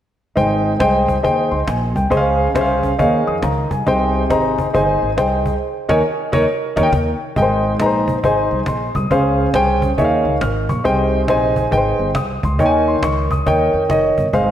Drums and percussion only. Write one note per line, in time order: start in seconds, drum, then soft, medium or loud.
0.37 cajon bass loud
0.65 cajon slap soft
0.80 cajon bass medium
0.80 cajon slap loud
1.08 cajon bass medium
1.25 cajon bass loud
1.52 cajon slap soft
1.68 cajon slap medium
1.96 cajon bass medium
2.12 cajon bass loud
2.40 cajon slap soft
2.55 cajon bass medium
2.55 cajon slap loud
2.83 cajon bass medium
2.99 cajon bass loud
3.27 cajon slap soft
3.43 cajon slap loud
3.71 cajon bass medium
3.87 cajon bass loud
4.16 cajon slap soft
4.30 cajon bass medium
4.30 cajon slap loud
4.58 cajon bass medium
4.75 cajon bass loud
5.02 cajon slap soft
5.18 cajon slap medium
5.46 cajon bass medium
5.89 cajon bass medium
5.89 cajon slap medium
6.33 cajon bass loud
6.33 cajon slap loud
6.77 cajon bass loud
6.77 cajon slap loud
6.93 cajon bass loud
6.93 cajon slap loud
7.36 cajon bass loud
7.65 cajon slap soft
7.80 cajon slap loud
8.08 cajon bass medium
8.16 cajon slap soft
8.24 cajon bass loud
8.51 cajon slap soft
8.66 cajon bass medium
8.66 cajon slap medium
8.95 cajon bass medium
9.11 cajon bass medium
9.39 cajon slap soft
9.54 cajon slap loud
9.82 cajon bass medium
9.90 cajon slap soft
9.98 cajon bass medium
10.26 cajon slap soft
10.41 cajon bass medium
10.41 cajon slap medium
10.69 cajon bass medium
10.85 cajon bass loud
11.13 cajon slap soft
11.28 cajon slap medium
11.56 cajon bass medium
11.64 cajon slap soft
11.72 cajon bass loud
12.00 cajon slap soft
12.15 cajon bass medium
12.15 cajon slap loud
12.43 cajon bass medium
12.59 cajon bass medium
12.88 cajon slap soft
13.03 cajon slap loud
13.31 cajon bass medium
13.39 cajon slap soft
13.47 cajon bass loud
13.74 cajon slap soft
13.90 cajon bass medium
13.90 cajon slap medium
14.18 cajon bass medium
14.26 cajon slap soft
14.33 cajon bass loud